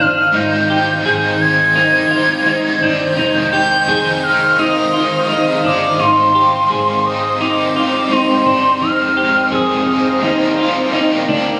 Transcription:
Already playing: D#3 C5 F5
0.00 G1 D4 F6
0.32 G#1 G#2 D#3 G3 C4 D#4 C5
0.36 G6
0.68 C4 D#4 G4 D#6
0.73 G3
0.92 G6
1.03 G#1 G#2 D#3 C4 D#4 G#4
1.38 C4 D#4 G#6
1.74 D#3 G3 C4 D#4 G#6
1.79 D#4
2.10 C4 D#4 F4
2.15 G3
2.45 G#2 D#3 G3 C4 D#4
2.80 G1 C4 D4 D#4 G6
2.85 G3
3.17 F1 F2 C3 D#3 G#3 D#4 C5 F5 C6
3.40 D#6
3.51 G#3 D#4 G4 G6
3.56 D#3
3.62 F6
3.87 F1 F2 C3 D#3 G#3 D#4 G#4
4.23 G#3 D#4 F6
4.28 D#3
4.57 C3 D#3 G#3 D#4 D#6
4.62 D#4
4.93 G#3 D#4 F4
4.99 D#3
5.29 F2 C3 D#3 G#3 D#4 D#6
5.33 D#4
5.64 G1 G#3 D4 D#4 D6
5.70 D#3
5.99 G#1 G#2 D#3 G3 C4 D#4 G5 C6
6.34 C4 D#4 G4
6.39 G3
6.70 G#1 G#2 D#3 C4 D#4 G#4
7.04 C4 D#4 D#6
7.39 D#3 G3 C4 D#4 D6
7.44 D#4
7.73 C4 D#4 F4 D6
7.78 G3
8.09 G#2 D#3 G3 C4 D#4 C6
8.45 G1 C4 D4 D#4
8.50 G3
8.81 F2 C3 D#3 G#3 D#4 F5 F6
9.16 G#3 D#4 G4
9.20 D#3
9.50 F2 C3 D#3 G#3 D#4 G#4
9.54 A#5 D#6
9.85 G#3 D#4
9.90 D#3
10.21 D#2 D#3 G3 A#3 D#4 A#4 D5 G5
10.26 D4
10.56 A#3 D4 F4
10.61 G3
10.92 D#3 G3 A#3 D#4 G5
10.96 D4
11.16 A#5
11.27 D2 A#3 D4
11.32 G3
11.41 C6

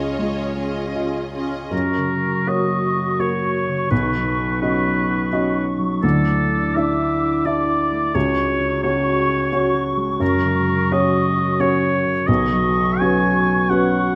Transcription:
Already playing: C#2 C#3 G#3 C#4 F4 G#4 C#5 D#5
0.19 G#3 D#5
0.58 C#4 F4 G#4 D#5
0.95 F4 D#5 F5
1.34 C#4 F4 G#4 D#5
1.71 F#2 F#4 A#4 C#6
1.97 C#3
2.23 A#3
2.47 A#3 F#4 C#5 D#5
2.72 C#5
2.96 F#4
3.19 A#3 F#4 C#5
3.44 F#4
3.68 C#3
3.90 B1 B2 D#4 B4
4.15 F#3
4.38 C#4
4.62 C#4 F#4 B4 D#5
4.85 D#5
5.09 F#4
5.32 C#4 F#4 D#5
5.55 F#4
5.78 F#3
6.02 D2 D3 E4 A4 D6
6.26 A3
6.51 D4
6.75 D4 E4 E5
6.99 E5
7.22 E4
7.45 D4 E4 D5 E5
7.68 E4
7.92 A3
8.14 C#2 C#3 F#4 C#5 C#6
8.37 G#3
8.60 C#4
8.83 C#4 F#4 C#5
9.06 C#5
9.29 F#4
9.52 C#4 F#4 C#5
9.74 F#4
9.97 G#3
10.20 F#2 A#4
10.43 C#3
10.68 C#4
10.92 C#4 F#4 C#5 D#5
11.15 C#5
11.38 F#4
11.60 C#4 F#4 C#5
11.83 F#4
12.05 C#3
12.27 B1 B2 F#4 D#5 C#6
12.52 F#3
12.76 C#4
12.99 C#4 F#4 B4 G#5
13.24 B4
13.47 F#4
13.70 C#4 F#4 B4 F#5
13.93 F#4

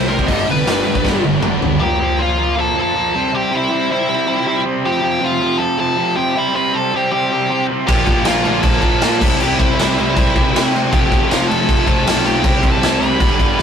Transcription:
Already playing: C2 E4
0.08 C3 G3 C4 A#4
0.19 kick
0.27 G1 G2 D3 G3 D#5, kick, open hi-hat
0.31 B3 D4
0.46 F1 G2 D3
0.51 B4
0.65 G1 G2 D3 G3, snare, open hi-hat
0.86 G2 D3
0.95 kick
1.04 G1 G2 D3 G3, kick, snare
1.24 G1 G2 D3, high tom
1.42 G1 G2 D3, mid tom
1.61 G1 G2 D3, floor tom
1.80 A#2 F3 A#3 G4 G5
1.99 A#2 F3 A#3
2.19 A#2 F3 A#3 F4 F5
2.38 A#2 F3 A#3
2.57 A#2 F3 A#3 A4 A5
2.75 A#2 F3 A#3 A4
2.82 A5
2.95 A#2 F3 A#3
3.15 C3 G3 C4
3.33 C3 G3 C4 G4 G5
3.52 C3 G3 C4 E4
3.57 E5
3.71 C3 G3 C4
3.90 C3 G3 C4 E4 E5
4.09 C3 G3 C4
4.27 C3 G3 C4
4.47 C3 G3 C4
4.64 C3 G3 C4
4.84 F2 C3 F3 G4 G5
5.02 F2 C3 F3
5.20 F2 C3 F3
5.24 F4 F5
5.40 F2 C3 F3
5.58 F2 C3 F3 A4 A5
5.78 F2 C3 F3 A4 A5
5.97 F2 C3 F3
6.16 F2 C3 F3 G4 G5
6.35 C3 G3 C4 E4 E5
6.55 C3 G3 C4 B4 B5
6.73 C3 G3 C4 A4 A5
6.93 C3 G3 C4 G4 G5
7.12 C3 G3 C4 G4 G5
7.31 C3 G3 C4
7.49 C3 G3 C4
7.69 C3 G3 C4
7.87 A#1 A#2 D3 F3 A#3 G4 G5, kick, crash
7.91 F4
8.05 A#1 A#2 F3 A#3 G4 G5, kick, crash
8.24 A#1 A#2 F3 A#3 F4 F5, snare, crash
8.44 A#1 A#2 F3 A#3, crash
8.62 A#1 A#2 F3 A#3 A4 A5, kick, crash
8.81 A#1 A#2 F3 A#3 F4 A4 A5, kick, crash
8.86 D3
9.01 A#2 D3 F3 A#3 F4, snare, crash
9.21 C2 C3 G3 C4 E4, kick, crash
9.40 C2 C3 G3 C4 G4 G5, crash
9.57 C2 C3 G3 E4 E5, kick, crash
9.62 C4
9.75 E4 E5
9.79 C2 C3 G3 C4, snare, crash
9.94 E4 E5
9.98 C2 C3 G3 C4, crash
10.17 C2 C3 G3 C4 E4, kick, crash
10.34 C2 C3 G3 C4 E4, kick, crash
10.55 C3 G3 C4, snare, crash
10.73 C3 G3 C4, crash
10.92 F1 F2 C3 F3 A3 C4 F4 G4 G5, kick, crash
11.11 F1 F2 C3 F3, kick, crash
11.29 F1 F2 C3 F3 F4 F5, snare, crash
11.47 F1 F2 C3 F3 A4 A5
11.51 crash
11.67 F1 F2 C3 F3, kick, crash
11.85 F1 F2 C3 F3 A3 C4 F4, kick, crash
11.96 A4 A5
12.05 B1 F2 C3 F3 A3 C4 F4, snare, crash
12.25 F2 C3 F3 G4 G5, crash
12.44 C2 C3 G3 C4 E4, kick, crash
12.62 C2 C3 G3 C4, kick, crash
12.72 A4 A5
12.81 C2 C3 G3 C4, snare, crash
12.99 C2 C3 G3 C4 B4 B5
13.03 crash
13.18 G1 G2 D3 G3 B3, kick, crash
13.23 D4
13.39 G1 G2 D3 G3, kick, crash
13.58 A1 G2 D3 G3, snare

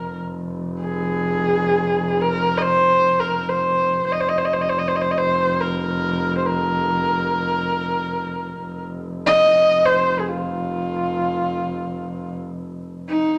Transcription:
Already playing: F1 A#4
0.81 G#4
2.22 A#4
2.58 D#5
2.62 C5
3.20 A#4
3.48 C5
4.05 F1 C5
4.12 D#5
4.21 C5
4.29 D#5
4.38 C5
4.45 D#5
4.53 C5
4.61 D#5
4.69 C5
4.79 D#5
4.88 C5
4.96 D#5
5.01 C5
5.11 D#5
5.18 C5
5.60 A#4
6.38 C5
6.46 A#4
8.58 F1
9.26 D#5
9.85 C5
10.19 G#4
10.29 F4
13.09 D#4

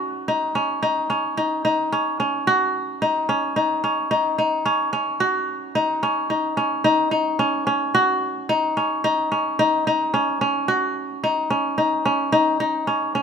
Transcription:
Already playing: C#4 D#4 F#4
0.28 D#4
0.55 C#4
0.82 D#4
1.10 C#4
1.37 D#4
1.65 D#4
1.92 C#4
2.20 C#4
2.47 F#4
3.02 D#4
3.29 C#4
3.56 D#4
3.84 C#4
4.11 D#4
4.38 D#4
4.65 C#4
4.93 C#4
5.20 F#4
5.75 D#4
6.03 C#4
6.30 D#4
6.57 C#4
6.84 D#4
7.11 D#4
7.39 C#4
7.67 C#4
7.95 F#4
8.49 D#4
8.77 C#4
9.04 D#4
9.32 C#4
9.59 D#4
9.87 D#4
10.14 C#4
10.41 C#4
10.68 F#4
11.24 D#4
11.50 C#4
11.78 D#4
12.05 C#4
12.32 D#4
12.60 D#4
12.87 C#4
13.15 C#4

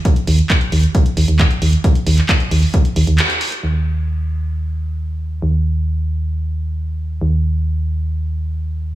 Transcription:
0.05 kick, closed hi-hat
0.16 closed hi-hat
0.27 D#2, open hi-hat
0.39 closed hi-hat
0.50 kick, clap, closed hi-hat
0.61 closed hi-hat
0.72 D#2, open hi-hat
0.83 closed hi-hat
0.95 kick, closed hi-hat
1.06 closed hi-hat
1.17 D#2, open hi-hat
1.28 D#2, closed hi-hat
1.39 kick, clap, closed hi-hat
1.51 closed hi-hat
1.62 D#2, open hi-hat
1.73 closed hi-hat
1.84 kick, closed hi-hat
1.95 closed hi-hat
2.07 D#2, open hi-hat
2.18 clap, closed hi-hat
2.29 kick, clap, closed hi-hat
2.40 closed hi-hat
2.51 D#2, open hi-hat
2.63 open hi-hat
2.74 kick, closed hi-hat
2.85 closed hi-hat
2.96 D#2, open hi-hat
3.07 D#2, closed hi-hat
3.19 clap, closed hi-hat
3.30 closed hi-hat
3.41 open hi-hat
3.52 closed hi-hat
3.63 D#2, crash
5.42 D#2
7.21 D#2

